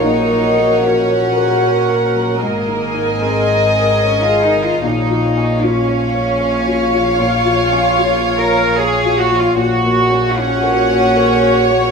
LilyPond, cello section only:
\new Staff \with { instrumentName = "Cello section" } { \time 3/4 \key bes \minor \tempo 4 = 75 ees'4 des'2 | bes4 c'4 des'16 f'16 ees'16 f'16 | ees'4 des'2 | f'4. bes'8 aes'8 ges'16 f'16 |
ges'4 des'2 | }